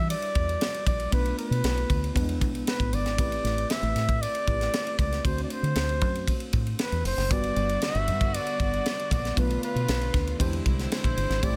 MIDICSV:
0, 0, Header, 1, 6, 480
1, 0, Start_track
1, 0, Key_signature, 1, "minor"
1, 0, Tempo, 515021
1, 1049, Time_signature, 4, 2, 24, 8
1, 10777, End_track
2, 0, Start_track
2, 0, Title_t, "Flugelhorn"
2, 0, Program_c, 0, 56
2, 97, Note_on_c, 0, 74, 110
2, 776, Note_off_c, 0, 74, 0
2, 818, Note_on_c, 0, 74, 99
2, 1037, Note_off_c, 0, 74, 0
2, 1057, Note_on_c, 0, 71, 101
2, 1277, Note_off_c, 0, 71, 0
2, 1294, Note_on_c, 0, 71, 95
2, 2215, Note_off_c, 0, 71, 0
2, 2503, Note_on_c, 0, 71, 94
2, 2741, Note_on_c, 0, 74, 103
2, 2755, Note_off_c, 0, 71, 0
2, 3458, Note_on_c, 0, 76, 104
2, 3472, Note_off_c, 0, 74, 0
2, 3931, Note_on_c, 0, 74, 121
2, 3945, Note_off_c, 0, 76, 0
2, 4648, Note_off_c, 0, 74, 0
2, 4653, Note_on_c, 0, 74, 92
2, 4894, Note_on_c, 0, 72, 97
2, 4908, Note_off_c, 0, 74, 0
2, 5063, Note_off_c, 0, 72, 0
2, 5069, Note_on_c, 0, 74, 59
2, 5138, Note_on_c, 0, 72, 98
2, 5152, Note_off_c, 0, 74, 0
2, 6095, Note_off_c, 0, 72, 0
2, 6341, Note_on_c, 0, 71, 96
2, 6560, Note_off_c, 0, 71, 0
2, 6586, Note_on_c, 0, 72, 96
2, 6825, Note_on_c, 0, 74, 113
2, 6839, Note_off_c, 0, 72, 0
2, 7304, Note_on_c, 0, 76, 110
2, 7318, Note_off_c, 0, 74, 0
2, 7786, Note_on_c, 0, 74, 117
2, 7800, Note_off_c, 0, 76, 0
2, 8500, Note_off_c, 0, 74, 0
2, 8507, Note_on_c, 0, 74, 94
2, 8748, Note_on_c, 0, 71, 98
2, 8762, Note_off_c, 0, 74, 0
2, 8980, Note_off_c, 0, 71, 0
2, 8990, Note_on_c, 0, 71, 100
2, 9904, Note_off_c, 0, 71, 0
2, 10181, Note_on_c, 0, 72, 99
2, 10661, Note_on_c, 0, 74, 119
2, 10675, Note_off_c, 0, 72, 0
2, 10777, Note_off_c, 0, 74, 0
2, 10777, End_track
3, 0, Start_track
3, 0, Title_t, "Tine electric piano"
3, 0, Program_c, 1, 4
3, 0, Control_c, 1, 64, 127
3, 0, Note_on_c, 1, 55, 66
3, 0, Note_on_c, 1, 62, 62
3, 0, Note_on_c, 1, 64, 64
3, 0, Note_on_c, 1, 66, 61
3, 0, Note_on_c, 1, 71, 77
3, 1009, Note_off_c, 1, 55, 0
3, 1010, Note_off_c, 1, 62, 0
3, 1014, Note_off_c, 1, 64, 0
3, 1017, Note_off_c, 1, 66, 0
3, 1020, Note_off_c, 1, 71, 0
3, 1036, Note_on_c, 1, 57, 73
3, 1042, Note_on_c, 1, 59, 62
3, 1049, Note_on_c, 1, 62, 64
3, 1052, Note_on_c, 1, 65, 63
3, 1056, Note_on_c, 1, 71, 72
3, 1060, Control_c, 1, 64, 0
3, 1225, Control_c, 1, 64, 127
3, 1984, Note_off_c, 1, 57, 0
3, 1987, Note_off_c, 1, 59, 0
3, 1990, Note_off_c, 1, 62, 0
3, 1992, Note_off_c, 1, 65, 0
3, 1994, Note_off_c, 1, 71, 0
3, 1996, Note_on_c, 1, 55, 64
3, 2000, Note_on_c, 1, 59, 73
3, 2009, Note_on_c, 1, 62, 76
3, 2015, Note_on_c, 1, 64, 73
3, 2017, Note_on_c, 1, 71, 84
3, 2023, Control_c, 1, 64, 0
3, 2055, Note_on_c, 1, 56, 78
3, 2061, Note_off_c, 1, 55, 0
3, 2193, Control_c, 1, 64, 127
3, 2946, Note_off_c, 1, 59, 0
3, 2950, Note_off_c, 1, 62, 0
3, 2953, Note_off_c, 1, 64, 0
3, 2954, Note_off_c, 1, 71, 0
3, 2961, Note_on_c, 1, 57, 68
3, 2966, Note_on_c, 1, 60, 64
3, 2972, Note_on_c, 1, 64, 64
3, 2974, Note_off_c, 1, 56, 0
3, 2975, Note_on_c, 1, 67, 63
3, 2982, Control_c, 1, 64, 0
3, 2983, Note_on_c, 1, 71, 78
3, 3152, Control_c, 1, 64, 127
3, 4142, Note_off_c, 1, 57, 0
3, 4144, Note_off_c, 1, 60, 0
3, 4147, Note_off_c, 1, 64, 0
3, 4149, Note_off_c, 1, 67, 0
3, 4153, Note_off_c, 1, 71, 0
3, 4164, Note_on_c, 1, 57, 50
3, 4164, Note_on_c, 1, 60, 48
3, 4168, Note_on_c, 1, 64, 45
3, 4168, Note_on_c, 1, 67, 47
3, 4174, Note_on_c, 1, 71, 55
3, 4865, Note_off_c, 1, 57, 0
3, 4872, Note_off_c, 1, 60, 0
3, 4876, Note_on_c, 1, 57, 65
3, 4883, Note_on_c, 1, 60, 64
3, 4888, Note_on_c, 1, 62, 66
3, 4890, Note_off_c, 1, 64, 0
3, 4890, Note_off_c, 1, 67, 0
3, 4892, Note_off_c, 1, 71, 0
3, 4896, Note_on_c, 1, 66, 66
3, 4898, Note_on_c, 1, 72, 74
3, 4904, Control_c, 1, 64, 0
3, 5075, Control_c, 1, 64, 127
3, 6767, Note_off_c, 1, 57, 0
3, 6771, Note_off_c, 1, 60, 0
3, 6773, Note_off_c, 1, 62, 0
3, 6777, Note_off_c, 1, 66, 0
3, 6778, Note_off_c, 1, 72, 0
3, 6797, Note_on_c, 1, 55, 71
3, 6804, Note_on_c, 1, 59, 62
3, 6808, Note_on_c, 1, 62, 65
3, 6814, Note_on_c, 1, 66, 64
3, 6820, Note_on_c, 1, 71, 76
3, 6825, Control_c, 1, 64, 0
3, 7011, Control_c, 1, 64, 127
3, 8688, Note_off_c, 1, 55, 0
3, 8691, Note_off_c, 1, 59, 0
3, 8693, Note_off_c, 1, 62, 0
3, 8696, Note_off_c, 1, 66, 0
3, 8699, Note_off_c, 1, 71, 0
3, 8723, Note_on_c, 1, 57, 73
3, 8730, Note_on_c, 1, 59, 60
3, 8734, Note_on_c, 1, 62, 65
3, 8739, Note_on_c, 1, 65, 60
3, 8746, Control_c, 1, 64, 0
3, 8747, Note_on_c, 1, 71, 76
3, 8915, Control_c, 1, 64, 127
3, 9668, Note_off_c, 1, 57, 0
3, 9672, Note_off_c, 1, 59, 0
3, 9674, Note_off_c, 1, 62, 0
3, 9677, Note_off_c, 1, 65, 0
3, 9680, Note_on_c, 1, 56, 81
3, 9681, Note_off_c, 1, 71, 0
3, 9688, Note_on_c, 1, 62, 71
3, 9693, Note_on_c, 1, 64, 75
3, 9697, Note_on_c, 1, 67, 72
3, 9703, Note_on_c, 1, 72, 89
3, 9706, Control_c, 1, 64, 0
3, 9882, Control_c, 1, 64, 127
3, 10627, Note_off_c, 1, 56, 0
3, 10631, Note_off_c, 1, 62, 0
3, 10634, Note_off_c, 1, 64, 0
3, 10636, Note_off_c, 1, 67, 0
3, 10639, Note_off_c, 1, 72, 0
3, 10640, Note_on_c, 1, 57, 70
3, 10647, Note_on_c, 1, 60, 63
3, 10651, Note_on_c, 1, 64, 68
3, 10654, Note_on_c, 1, 67, 65
3, 10663, Control_c, 1, 64, 0
3, 10663, Note_on_c, 1, 72, 73
3, 10777, Note_off_c, 1, 57, 0
3, 10777, Note_off_c, 1, 60, 0
3, 10777, Note_off_c, 1, 64, 0
3, 10777, Note_off_c, 1, 67, 0
3, 10777, Note_off_c, 1, 72, 0
3, 10777, End_track
4, 0, Start_track
4, 0, Title_t, "String section"
4, 0, Program_c, 2, 48
4, 6797, Note_on_c, 2, 55, 69
4, 6797, Note_on_c, 2, 66, 83
4, 6800, Note_on_c, 2, 50, 78
4, 6800, Note_on_c, 2, 59, 69
4, 8706, Note_off_c, 2, 55, 0
4, 8706, Note_off_c, 2, 66, 0
4, 8707, Note_off_c, 2, 50, 0
4, 8729, Note_on_c, 2, 65, 84
4, 8731, Note_on_c, 2, 50, 77
4, 8735, Note_on_c, 2, 57, 68
4, 9658, Note_off_c, 2, 59, 0
4, 9682, Note_off_c, 2, 65, 0
4, 9684, Note_off_c, 2, 57, 0
4, 9693, Note_on_c, 2, 64, 89
4, 9698, Note_on_c, 2, 60, 71
4, 9699, Note_on_c, 2, 56, 74
4, 10633, Note_off_c, 2, 50, 0
4, 10644, Note_on_c, 2, 55, 70
4, 10646, Note_off_c, 2, 56, 0
4, 10646, Note_off_c, 2, 60, 0
4, 10651, Note_on_c, 2, 48, 78
4, 10651, Note_on_c, 2, 57, 73
4, 10777, Note_off_c, 2, 48, 0
4, 10777, Note_off_c, 2, 55, 0
4, 10777, Note_off_c, 2, 57, 0
4, 10777, Note_off_c, 2, 64, 0
4, 10777, End_track
5, 0, Start_track
5, 0, Title_t, "Fingered electric bass"
5, 0, Program_c, 3, 33
5, 0, Note_on_c, 3, 52, 99
5, 126, Note_off_c, 3, 52, 0
5, 330, Note_on_c, 3, 40, 93
5, 514, Note_off_c, 3, 40, 0
5, 805, Note_on_c, 3, 34, 100
5, 991, Note_off_c, 3, 34, 0
5, 1046, Note_on_c, 3, 35, 108
5, 1231, Note_off_c, 3, 35, 0
5, 1403, Note_on_c, 3, 47, 105
5, 1497, Note_off_c, 3, 47, 0
5, 1525, Note_on_c, 3, 35, 106
5, 1710, Note_off_c, 3, 35, 0
5, 1767, Note_on_c, 3, 38, 96
5, 1952, Note_off_c, 3, 38, 0
5, 2011, Note_on_c, 3, 40, 120
5, 2249, Note_off_c, 3, 40, 0
5, 2249, Note_on_c, 3, 35, 95
5, 2433, Note_off_c, 3, 35, 0
5, 2608, Note_on_c, 3, 33, 90
5, 2701, Note_off_c, 3, 33, 0
5, 2726, Note_on_c, 3, 31, 97
5, 2844, Note_off_c, 3, 31, 0
5, 2844, Note_on_c, 3, 32, 91
5, 2967, Note_off_c, 3, 32, 0
5, 2967, Note_on_c, 3, 33, 122
5, 3152, Note_off_c, 3, 33, 0
5, 3206, Note_on_c, 3, 33, 103
5, 3391, Note_off_c, 3, 33, 0
5, 3564, Note_on_c, 3, 33, 115
5, 3658, Note_off_c, 3, 33, 0
5, 3684, Note_on_c, 3, 45, 107
5, 3962, Note_off_c, 3, 45, 0
5, 4170, Note_on_c, 3, 33, 97
5, 4354, Note_off_c, 3, 33, 0
5, 4646, Note_on_c, 3, 37, 98
5, 4832, Note_off_c, 3, 37, 0
5, 4888, Note_on_c, 3, 38, 102
5, 5073, Note_off_c, 3, 38, 0
5, 5244, Note_on_c, 3, 50, 98
5, 5339, Note_off_c, 3, 50, 0
5, 5366, Note_on_c, 3, 38, 106
5, 5607, Note_off_c, 3, 38, 0
5, 5607, Note_on_c, 3, 42, 100
5, 5884, Note_off_c, 3, 42, 0
5, 6087, Note_on_c, 3, 45, 96
5, 6273, Note_off_c, 3, 45, 0
5, 6449, Note_on_c, 3, 40, 90
5, 6542, Note_off_c, 3, 40, 0
5, 6565, Note_on_c, 3, 29, 85
5, 6660, Note_off_c, 3, 29, 0
5, 6684, Note_on_c, 3, 30, 100
5, 6811, Note_off_c, 3, 30, 0
5, 6811, Note_on_c, 3, 31, 115
5, 6995, Note_off_c, 3, 31, 0
5, 7047, Note_on_c, 3, 31, 102
5, 7232, Note_off_c, 3, 31, 0
5, 7408, Note_on_c, 3, 31, 96
5, 7529, Note_on_c, 3, 43, 101
5, 7543, Note_off_c, 3, 31, 0
5, 7806, Note_off_c, 3, 43, 0
5, 8012, Note_on_c, 3, 31, 93
5, 8196, Note_off_c, 3, 31, 0
5, 8493, Note_on_c, 3, 34, 93
5, 8677, Note_off_c, 3, 34, 0
5, 8732, Note_on_c, 3, 35, 113
5, 8916, Note_off_c, 3, 35, 0
5, 9090, Note_on_c, 3, 47, 102
5, 9183, Note_off_c, 3, 47, 0
5, 9212, Note_on_c, 3, 35, 101
5, 9396, Note_off_c, 3, 35, 0
5, 9449, Note_on_c, 3, 38, 101
5, 9634, Note_off_c, 3, 38, 0
5, 9691, Note_on_c, 3, 40, 109
5, 9875, Note_off_c, 3, 40, 0
5, 9934, Note_on_c, 3, 36, 97
5, 10117, Note_off_c, 3, 36, 0
5, 10291, Note_on_c, 3, 34, 88
5, 10384, Note_off_c, 3, 34, 0
5, 10408, Note_on_c, 3, 31, 104
5, 10502, Note_off_c, 3, 31, 0
5, 10528, Note_on_c, 3, 32, 100
5, 10622, Note_off_c, 3, 32, 0
5, 10652, Note_on_c, 3, 33, 116
5, 10777, Note_off_c, 3, 33, 0
5, 10777, End_track
6, 0, Start_track
6, 0, Title_t, "Drums"
6, 92, Note_on_c, 9, 51, 88
6, 186, Note_off_c, 9, 51, 0
6, 206, Note_on_c, 9, 51, 45
6, 300, Note_off_c, 9, 51, 0
6, 326, Note_on_c, 9, 51, 58
6, 331, Note_on_c, 9, 36, 92
6, 420, Note_off_c, 9, 51, 0
6, 424, Note_off_c, 9, 36, 0
6, 456, Note_on_c, 9, 51, 42
6, 549, Note_off_c, 9, 51, 0
6, 569, Note_on_c, 9, 51, 83
6, 576, Note_on_c, 9, 38, 113
6, 662, Note_off_c, 9, 51, 0
6, 669, Note_off_c, 9, 38, 0
6, 692, Note_on_c, 9, 51, 51
6, 785, Note_off_c, 9, 51, 0
6, 806, Note_on_c, 9, 36, 97
6, 807, Note_on_c, 9, 51, 70
6, 900, Note_off_c, 9, 36, 0
6, 900, Note_off_c, 9, 51, 0
6, 927, Note_on_c, 9, 51, 45
6, 1021, Note_off_c, 9, 51, 0
6, 1045, Note_on_c, 9, 51, 83
6, 1048, Note_on_c, 9, 36, 123
6, 1138, Note_off_c, 9, 51, 0
6, 1141, Note_off_c, 9, 36, 0
6, 1169, Note_on_c, 9, 51, 46
6, 1262, Note_off_c, 9, 51, 0
6, 1289, Note_on_c, 9, 51, 61
6, 1382, Note_off_c, 9, 51, 0
6, 1418, Note_on_c, 9, 51, 47
6, 1511, Note_off_c, 9, 51, 0
6, 1527, Note_on_c, 9, 51, 82
6, 1536, Note_on_c, 9, 38, 120
6, 1620, Note_off_c, 9, 51, 0
6, 1629, Note_off_c, 9, 38, 0
6, 1653, Note_on_c, 9, 51, 37
6, 1746, Note_off_c, 9, 51, 0
6, 1769, Note_on_c, 9, 36, 88
6, 1769, Note_on_c, 9, 51, 60
6, 1862, Note_off_c, 9, 36, 0
6, 1862, Note_off_c, 9, 51, 0
6, 1898, Note_on_c, 9, 51, 43
6, 1992, Note_off_c, 9, 51, 0
6, 2010, Note_on_c, 9, 36, 102
6, 2021, Note_on_c, 9, 51, 81
6, 2103, Note_off_c, 9, 36, 0
6, 2114, Note_off_c, 9, 51, 0
6, 2131, Note_on_c, 9, 51, 45
6, 2225, Note_off_c, 9, 51, 0
6, 2250, Note_on_c, 9, 36, 99
6, 2250, Note_on_c, 9, 51, 58
6, 2343, Note_off_c, 9, 36, 0
6, 2343, Note_off_c, 9, 51, 0
6, 2374, Note_on_c, 9, 51, 42
6, 2467, Note_off_c, 9, 51, 0
6, 2489, Note_on_c, 9, 51, 81
6, 2497, Note_on_c, 9, 38, 114
6, 2582, Note_off_c, 9, 51, 0
6, 2590, Note_off_c, 9, 38, 0
6, 2608, Note_on_c, 9, 36, 96
6, 2612, Note_on_c, 9, 51, 46
6, 2701, Note_off_c, 9, 36, 0
6, 2705, Note_off_c, 9, 51, 0
6, 2728, Note_on_c, 9, 51, 68
6, 2822, Note_off_c, 9, 51, 0
6, 2848, Note_on_c, 9, 51, 43
6, 2852, Note_on_c, 9, 38, 37
6, 2942, Note_off_c, 9, 51, 0
6, 2945, Note_off_c, 9, 38, 0
6, 2968, Note_on_c, 9, 36, 126
6, 2970, Note_on_c, 9, 51, 84
6, 3061, Note_off_c, 9, 36, 0
6, 3064, Note_off_c, 9, 51, 0
6, 3093, Note_on_c, 9, 51, 50
6, 3187, Note_off_c, 9, 51, 0
6, 3211, Note_on_c, 9, 51, 62
6, 3221, Note_on_c, 9, 38, 40
6, 3305, Note_off_c, 9, 51, 0
6, 3314, Note_off_c, 9, 38, 0
6, 3335, Note_on_c, 9, 51, 45
6, 3429, Note_off_c, 9, 51, 0
6, 3446, Note_on_c, 9, 51, 81
6, 3455, Note_on_c, 9, 38, 120
6, 3539, Note_off_c, 9, 51, 0
6, 3548, Note_off_c, 9, 38, 0
6, 3568, Note_on_c, 9, 51, 37
6, 3661, Note_off_c, 9, 51, 0
6, 3687, Note_on_c, 9, 51, 60
6, 3699, Note_on_c, 9, 38, 38
6, 3780, Note_off_c, 9, 51, 0
6, 3792, Note_off_c, 9, 38, 0
6, 3809, Note_on_c, 9, 36, 91
6, 3813, Note_on_c, 9, 51, 44
6, 3902, Note_off_c, 9, 36, 0
6, 3906, Note_off_c, 9, 51, 0
6, 3938, Note_on_c, 9, 51, 88
6, 4031, Note_off_c, 9, 51, 0
6, 4050, Note_on_c, 9, 51, 44
6, 4143, Note_off_c, 9, 51, 0
6, 4168, Note_on_c, 9, 51, 56
6, 4171, Note_on_c, 9, 36, 95
6, 4261, Note_off_c, 9, 51, 0
6, 4264, Note_off_c, 9, 36, 0
6, 4295, Note_on_c, 9, 51, 41
6, 4297, Note_on_c, 9, 38, 40
6, 4389, Note_off_c, 9, 51, 0
6, 4391, Note_off_c, 9, 38, 0
6, 4412, Note_on_c, 9, 51, 83
6, 4420, Note_on_c, 9, 38, 117
6, 4505, Note_off_c, 9, 51, 0
6, 4513, Note_off_c, 9, 38, 0
6, 4535, Note_on_c, 9, 51, 49
6, 4628, Note_off_c, 9, 51, 0
6, 4648, Note_on_c, 9, 36, 98
6, 4652, Note_on_c, 9, 51, 68
6, 4741, Note_off_c, 9, 36, 0
6, 4745, Note_off_c, 9, 51, 0
6, 4775, Note_on_c, 9, 51, 44
6, 4778, Note_on_c, 9, 38, 37
6, 4868, Note_off_c, 9, 51, 0
6, 4871, Note_off_c, 9, 38, 0
6, 4890, Note_on_c, 9, 36, 127
6, 4892, Note_on_c, 9, 51, 79
6, 4983, Note_off_c, 9, 36, 0
6, 4986, Note_off_c, 9, 51, 0
6, 5015, Note_on_c, 9, 51, 48
6, 5109, Note_off_c, 9, 51, 0
6, 5127, Note_on_c, 9, 51, 61
6, 5220, Note_off_c, 9, 51, 0
6, 5255, Note_on_c, 9, 51, 49
6, 5348, Note_off_c, 9, 51, 0
6, 5363, Note_on_c, 9, 51, 81
6, 5372, Note_on_c, 9, 38, 118
6, 5456, Note_off_c, 9, 51, 0
6, 5465, Note_off_c, 9, 38, 0
6, 5488, Note_on_c, 9, 51, 36
6, 5581, Note_off_c, 9, 51, 0
6, 5604, Note_on_c, 9, 51, 61
6, 5608, Note_on_c, 9, 36, 91
6, 5697, Note_off_c, 9, 51, 0
6, 5701, Note_off_c, 9, 36, 0
6, 5735, Note_on_c, 9, 51, 46
6, 5828, Note_off_c, 9, 51, 0
6, 5848, Note_on_c, 9, 36, 96
6, 5852, Note_on_c, 9, 51, 84
6, 5942, Note_off_c, 9, 36, 0
6, 5945, Note_off_c, 9, 51, 0
6, 5965, Note_on_c, 9, 51, 46
6, 6058, Note_off_c, 9, 51, 0
6, 6083, Note_on_c, 9, 51, 58
6, 6089, Note_on_c, 9, 36, 93
6, 6176, Note_off_c, 9, 51, 0
6, 6182, Note_off_c, 9, 36, 0
6, 6212, Note_on_c, 9, 51, 41
6, 6305, Note_off_c, 9, 51, 0
6, 6326, Note_on_c, 9, 51, 80
6, 6333, Note_on_c, 9, 38, 116
6, 6419, Note_off_c, 9, 51, 0
6, 6427, Note_off_c, 9, 38, 0
6, 6450, Note_on_c, 9, 51, 48
6, 6543, Note_off_c, 9, 51, 0
6, 6571, Note_on_c, 9, 46, 82
6, 6571, Note_on_c, 9, 51, 66
6, 6664, Note_off_c, 9, 46, 0
6, 6664, Note_off_c, 9, 51, 0
6, 6691, Note_on_c, 9, 51, 44
6, 6694, Note_on_c, 9, 38, 36
6, 6784, Note_off_c, 9, 51, 0
6, 6788, Note_off_c, 9, 38, 0
6, 6809, Note_on_c, 9, 44, 68
6, 6810, Note_on_c, 9, 36, 126
6, 6810, Note_on_c, 9, 51, 79
6, 6902, Note_off_c, 9, 44, 0
6, 6904, Note_off_c, 9, 36, 0
6, 6904, Note_off_c, 9, 51, 0
6, 6929, Note_on_c, 9, 51, 50
6, 7022, Note_off_c, 9, 51, 0
6, 7048, Note_on_c, 9, 51, 58
6, 7141, Note_off_c, 9, 51, 0
6, 7170, Note_on_c, 9, 51, 47
6, 7263, Note_off_c, 9, 51, 0
6, 7284, Note_on_c, 9, 51, 82
6, 7293, Note_on_c, 9, 38, 119
6, 7377, Note_off_c, 9, 51, 0
6, 7386, Note_off_c, 9, 38, 0
6, 7407, Note_on_c, 9, 51, 35
6, 7500, Note_off_c, 9, 51, 0
6, 7527, Note_on_c, 9, 51, 61
6, 7620, Note_off_c, 9, 51, 0
6, 7650, Note_on_c, 9, 36, 87
6, 7651, Note_on_c, 9, 51, 46
6, 7743, Note_off_c, 9, 36, 0
6, 7744, Note_off_c, 9, 51, 0
6, 7775, Note_on_c, 9, 51, 86
6, 7868, Note_off_c, 9, 51, 0
6, 7889, Note_on_c, 9, 51, 45
6, 7982, Note_off_c, 9, 51, 0
6, 8013, Note_on_c, 9, 36, 99
6, 8013, Note_on_c, 9, 51, 56
6, 8106, Note_off_c, 9, 36, 0
6, 8106, Note_off_c, 9, 51, 0
6, 8140, Note_on_c, 9, 51, 38
6, 8233, Note_off_c, 9, 51, 0
6, 8254, Note_on_c, 9, 51, 80
6, 8261, Note_on_c, 9, 38, 114
6, 8347, Note_off_c, 9, 51, 0
6, 8354, Note_off_c, 9, 38, 0
6, 8382, Note_on_c, 9, 51, 47
6, 8475, Note_off_c, 9, 51, 0
6, 8493, Note_on_c, 9, 36, 97
6, 8501, Note_on_c, 9, 51, 73
6, 8586, Note_off_c, 9, 36, 0
6, 8594, Note_off_c, 9, 51, 0
6, 8620, Note_on_c, 9, 51, 42
6, 8624, Note_on_c, 9, 38, 39
6, 8714, Note_off_c, 9, 51, 0
6, 8717, Note_off_c, 9, 38, 0
6, 8733, Note_on_c, 9, 36, 123
6, 8738, Note_on_c, 9, 51, 79
6, 8827, Note_off_c, 9, 36, 0
6, 8831, Note_off_c, 9, 51, 0
6, 8857, Note_on_c, 9, 51, 47
6, 8950, Note_off_c, 9, 51, 0
6, 8974, Note_on_c, 9, 51, 65
6, 9068, Note_off_c, 9, 51, 0
6, 9099, Note_on_c, 9, 51, 50
6, 9192, Note_off_c, 9, 51, 0
6, 9210, Note_on_c, 9, 51, 82
6, 9219, Note_on_c, 9, 38, 117
6, 9303, Note_off_c, 9, 51, 0
6, 9313, Note_off_c, 9, 38, 0
6, 9332, Note_on_c, 9, 51, 37
6, 9425, Note_off_c, 9, 51, 0
6, 9448, Note_on_c, 9, 51, 64
6, 9450, Note_on_c, 9, 36, 99
6, 9460, Note_on_c, 9, 38, 39
6, 9541, Note_off_c, 9, 51, 0
6, 9544, Note_off_c, 9, 36, 0
6, 9553, Note_off_c, 9, 38, 0
6, 9574, Note_on_c, 9, 51, 46
6, 9667, Note_off_c, 9, 51, 0
6, 9692, Note_on_c, 9, 36, 109
6, 9698, Note_on_c, 9, 51, 90
6, 9785, Note_off_c, 9, 36, 0
6, 9791, Note_off_c, 9, 51, 0
6, 9813, Note_on_c, 9, 51, 45
6, 9906, Note_off_c, 9, 51, 0
6, 9932, Note_on_c, 9, 51, 59
6, 9934, Note_on_c, 9, 36, 98
6, 10025, Note_off_c, 9, 51, 0
6, 10027, Note_off_c, 9, 36, 0
6, 10058, Note_on_c, 9, 51, 40
6, 10060, Note_on_c, 9, 38, 39
6, 10151, Note_off_c, 9, 51, 0
6, 10153, Note_off_c, 9, 38, 0
6, 10173, Note_on_c, 9, 51, 76
6, 10181, Note_on_c, 9, 38, 120
6, 10266, Note_off_c, 9, 51, 0
6, 10274, Note_off_c, 9, 38, 0
6, 10292, Note_on_c, 9, 36, 89
6, 10297, Note_on_c, 9, 51, 48
6, 10385, Note_off_c, 9, 36, 0
6, 10391, Note_off_c, 9, 51, 0
6, 10414, Note_on_c, 9, 51, 71
6, 10507, Note_off_c, 9, 51, 0
6, 10536, Note_on_c, 9, 51, 44
6, 10539, Note_on_c, 9, 38, 36
6, 10629, Note_off_c, 9, 51, 0
6, 10632, Note_off_c, 9, 38, 0
6, 10652, Note_on_c, 9, 36, 116
6, 10652, Note_on_c, 9, 51, 84
6, 10745, Note_off_c, 9, 36, 0
6, 10745, Note_off_c, 9, 51, 0
6, 10777, End_track
0, 0, End_of_file